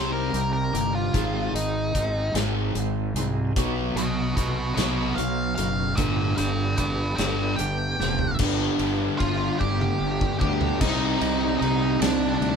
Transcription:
Already playing: fingered electric bass C2, overdriven electric guitar C3 G3 C4, clean electric guitar G3 C4 D#4 G4, lead electric guitar C5
0.12 lead electric guitar A#4
0.32 fingered electric bass C2, overdriven electric guitar C3 G3, clean electric guitar G3 C4 D#4 G4, closed hi-hat
0.53 lead electric guitar A#4
0.73 fingered electric bass G1, overdriven electric guitar C3 G3, clean electric guitar C4 D#4 G4, closed hi-hat
0.95 lead electric guitar F4
1.13 fingered electric bass G#1, overdriven electric guitar G#2 D#3 G#3, clean electric guitar G#2 D#3 G#3 C4 D#4 G#4, kick, closed hi-hat
1.53 fingered electric bass G#1, overdriven electric guitar G#2 D#3, clean electric guitar G#3 C4 D#4 G#4, lead electric guitar D#4, closed hi-hat
1.94 fingered electric bass G#1, clean electric guitar G#3 C4 D#4 G#4, kick, closed hi-hat
2.34 fingered electric bass G#1, overdriven electric guitar G#2 D#3 G#3, clean electric guitar G#3 C4 D#4 G#4, snare, closed hi-hat
2.75 fingered electric bass G#1, overdriven electric guitar G#2 D#3, clean electric guitar G#3 C4 D#4 G#4, closed hi-hat
3.14 fingered electric bass C2, overdriven electric guitar G#2 D#3, clean electric guitar C4 D#4 G#4, closed hi-hat
3.19 clean electric guitar G#3
3.56 fingered electric bass B1, overdriven electric guitar B2 F#3 B3, clean electric guitar B2 F#3 B3 D#4 F#4, kick, closed hi-hat
3.95 fingered electric bass B1, overdriven electric guitar B2 F#3, clean electric guitar D#4 F#4, lead electric guitar B4 D#5, closed hi-hat
3.99 clean electric guitar B3
4.36 fingered electric bass B1, clean electric guitar F#3 B3 D#4 F#4, lead electric guitar B4 D#5, kick, closed hi-hat
4.74 fingered electric bass B1, overdriven electric guitar B2 F#3 B3, clean electric guitar B3 D#4 F#4, lead electric guitar B4 D#5, snare, closed hi-hat
5.16 fingered electric bass B1, overdriven electric guitar B2 F#3, clean electric guitar F#3 B3 D#4 F#4, lead electric guitar F5, closed hi-hat
5.55 fingered electric bass F#1, overdriven electric guitar B2 F#3, clean electric guitar B3 D#4 F#4, lead electric guitar F5, closed hi-hat
5.95 fingered electric bass G1, clean electric guitar G2 D3 G3 B3 D4 G4, overdriven electric guitar G2, lead electric guitar D5 F5, kick, closed hi-hat
6.00 overdriven electric guitar D3 G3
6.37 fingered electric bass G1, overdriven electric guitar G2 D3, clean electric guitar G3 B3 D4 G4, lead electric guitar B4 G5, closed hi-hat
6.78 fingered electric bass G1, clean electric guitar G3 B3 D4 G4, lead electric guitar B4 G5, kick, closed hi-hat
7.16 fingered electric bass G1, overdriven electric guitar G2, clean electric guitar D4 G4, lead electric guitar B4 G5, snare, closed hi-hat
7.21 overdriven electric guitar D3 G3, clean electric guitar G3 B3
7.56 fingered electric bass G1, overdriven electric guitar G2, clean electric guitar G3 B3 D4 G4, lead electric guitar G5, closed hi-hat
7.61 overdriven electric guitar D3
7.99 fingered electric bass F1, overdriven electric guitar G2 D3, clean electric guitar G3 B3 D4 G4, snare
8.19 floor tom
8.39 fingered electric bass G1, overdriven electric guitar G2 D3 G3 B3 D4, kick, crash
8.79 fingered electric bass G1, ride
9.18 fingered electric bass G1, lead electric guitar F4 F5, kick, ride
9.59 fingered electric bass G1, lead electric guitar G4 G5, kick
9.81 high tom
10.00 fingered electric bass G1
10.21 kick
10.41 fingered electric bass D2, overdriven electric guitar G2 D3 G3 B3 D4, lead electric guitar G4 G5, kick
10.61 floor tom
10.81 fingered electric bass C2, overdriven electric guitar C3 G3 C4 D#4, lead electric guitar D#4 D#5, kick, crash
11.21 fingered electric bass C2, ride
11.59 fingered electric bass C2, lead electric guitar D#4 D#5, ride
12.01 fingered electric bass C2, lead electric guitar D4 D5, snare, ride
12.41 fingered electric bass D2, ride

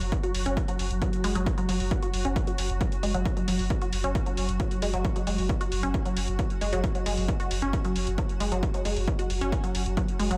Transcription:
Already playing: synth drone F#3 F#4
0.01 sub bass F#1, open hi-hat
0.12 kick, closed hi-hat
0.23 synth arpeggio sound F#4, closed hi-hat
0.34 sub bass F#1, open hi-hat
0.46 sub bass F#1, synth arpeggio sound C#4, closed hi-hat
0.57 kick, closed hi-hat
0.68 synth arpeggio sound F#3, closed hi-hat
0.79 sub bass F#1, open hi-hat
0.91 sub bass F#1, closed hi-hat
1.02 synth arpeggio sound F#3, kick, closed hi-hat
1.13 closed hi-hat
1.24 sub bass F#1, synth arpeggio sound G#3, open hi-hat
1.35 sub bass F#1, synth arpeggio sound F#3, closed hi-hat
1.46 kick, closed hi-hat
1.58 synth arpeggio sound F#3, closed hi-hat
1.69 sub bass F#1, synth arpeggio sound F#3, open hi-hat
1.80 sub bass F#1, open hi-hat
1.91 kick, closed hi-hat
2.02 synth arpeggio sound F#4, closed hi-hat
2.13 sub bass F#1, open hi-hat
2.25 sub bass F#1, synth arpeggio sound C#4, closed hi-hat
2.36 kick, closed hi-hat
2.47 synth arpeggio sound F#3, closed hi-hat
2.58 sub bass F#1, open hi-hat
2.70 sub bass F#1, closed hi-hat
2.81 synth arpeggio sound F#3, kick, closed hi-hat
2.92 closed hi-hat
3.03 sub bass F#1, synth arpeggio sound G#3, open hi-hat
3.14 sub bass F#1, synth arpeggio sound F#3, closed hi-hat
3.25 kick, closed hi-hat
3.37 synth arpeggio sound F#3, closed hi-hat
3.48 sub bass F#1, synth arpeggio sound F#3, open hi-hat
3.59 sub bass F#1, open hi-hat
3.70 kick, closed hi-hat
3.82 synth arpeggio sound F#4, closed hi-hat
3.93 sub bass F#1, open hi-hat
4.04 sub bass F#1, synth arpeggio sound C#4, closed hi-hat
4.15 kick, closed hi-hat
4.26 synth arpeggio sound F#3, closed hi-hat
4.37 sub bass F#1, open hi-hat
4.49 sub bass F#1, closed hi-hat
4.60 synth arpeggio sound F#3, kick, closed hi-hat
4.71 closed hi-hat
4.82 sub bass F#1, synth arpeggio sound G#3, open hi-hat
4.94 sub bass F#1, synth arpeggio sound F#3, closed hi-hat
5.05 kick, closed hi-hat
5.16 synth arpeggio sound F#3, closed hi-hat
5.27 sub bass F#1, synth arpeggio sound G#3, open hi-hat
5.38 sub bass F#1, open hi-hat
5.49 kick, closed hi-hat
5.61 synth arpeggio sound F#4, closed hi-hat
5.72 sub bass F#1, open hi-hat
5.83 sub bass F#1, synth arpeggio sound C#4, closed hi-hat
5.94 kick, closed hi-hat
6.05 synth arpeggio sound F#3, closed hi-hat
6.17 sub bass F#1, open hi-hat
6.28 sub bass F#1, closed hi-hat
6.39 synth arpeggio sound F#3, kick, closed hi-hat
6.50 closed hi-hat
6.61 sub bass F#1, synth arpeggio sound G#3, open hi-hat
6.73 sub bass F#1, synth arpeggio sound F#3, closed hi-hat
6.84 kick, closed hi-hat
6.95 synth arpeggio sound F#3, closed hi-hat
7.06 sub bass F#1, synth arpeggio sound G#3, open hi-hat
7.17 sub bass F#1, open hi-hat
7.28 kick, closed hi-hat
7.40 synth arpeggio sound F#4, closed hi-hat
7.51 sub bass F#1, open hi-hat
7.62 sub bass F#1, synth arpeggio sound C#4, closed hi-hat
7.73 kick, closed hi-hat
7.85 synth arpeggio sound F#3, closed hi-hat
7.96 sub bass F#1, open hi-hat
8.07 sub bass F#1, closed hi-hat
8.18 synth arpeggio sound F#3, kick, closed hi-hat
8.29 closed hi-hat
8.40 sub bass F#1, synth arpeggio sound G#3, open hi-hat
8.52 sub bass F#1, synth arpeggio sound F#3, closed hi-hat
8.63 kick, closed hi-hat
8.74 synth arpeggio sound F#3, closed hi-hat
8.85 sub bass F#1, synth arpeggio sound G#3, open hi-hat
8.96 sub bass F#1, open hi-hat
9.08 kick, closed hi-hat
9.19 synth arpeggio sound F#4, closed hi-hat
9.30 sub bass F#1, open hi-hat
9.41 sub bass F#1, synth arpeggio sound C#4, closed hi-hat
9.52 kick, closed hi-hat
9.64 synth arpeggio sound F#3, closed hi-hat
9.75 sub bass F#1, open hi-hat
9.86 sub bass F#1, closed hi-hat
9.97 synth arpeggio sound F#3, kick, closed hi-hat
10.08 closed hi-hat
10.19 sub bass F#1, synth arpeggio sound G#3, open hi-hat
10.31 sub bass F#1, synth arpeggio sound F#3, closed hi-hat

